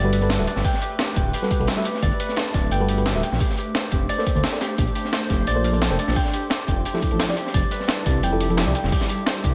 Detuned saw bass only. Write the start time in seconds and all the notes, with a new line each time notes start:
Already playing: G1
0.39 D1
0.56 G1
1.16 D1
1.60 B1
2.03 G1
2.54 D1
2.71 G1
3.15 D1
3.32 A#1
3.92 F1
4.35 D2
4.78 A#1
5.30 F1
5.47 A#1
5.91 F1
6.08 A#1
6.68 F1
7.11 A1
7.54 F1
8.06 C2
8.23 F1
8.67 C2
8.84 F1
9.44 C2